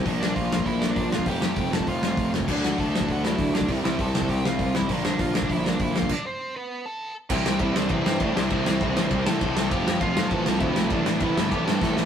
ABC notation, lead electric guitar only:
X:1
M:4/4
L:1/16
Q:1/4=199
K:C
V:1 name="Lead electric guitar"
z2 [Dd]2 [Ff]4 [Ee]3 [Dd]3 [Ff]2 | [Gg]3 [Gg]3 [Aa]2 [Ff]6 z2 | z2 [^F^f]2 [Aa]4 [Ff]2 [Ee]4 [Dd]2 | z2 [Ee]2 [Aa]4 [Gg]2 [Ff]4 [Ee]2 |
z2 [Dd]2 [Ff]2 [Dd]2 [Ee]2 [Dd]2 [Ee]2 [Ff]2 | [Dd]2 [Cc]4 [B,B]4 [Aa]4 z2 | [Gg]4 [Ee]2 [Dd]2 [Cc]4 [Dd]4 | [Cc]8- [Cc]2 [Aa]6 |
[Gg]4 [Ff]4 [Aa]4 [Ee]2 [Ee]2 | [Dd]4 [Ee]2 [Ee]2 [Gg]2 [Aa]4 z2 |]